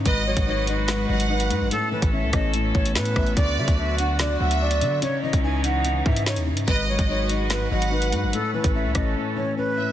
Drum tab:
HH |x--x--x-x--x-xx-|x--x--x-x--x-x-x|x--x--x-x--x-xx-|x--x--x-x--x-x-x|
SD |--------o-------|------r-----o-r-|--------o-------|------------o---|
BD |o--o------------|---o--o---o---o-|o--o------------|---o------o-----|

HH |x--x--x-x--x-xx-|x--x--x---------|
SD |--------o-------|------r---------|
BD |o--o------------|---o--o---------|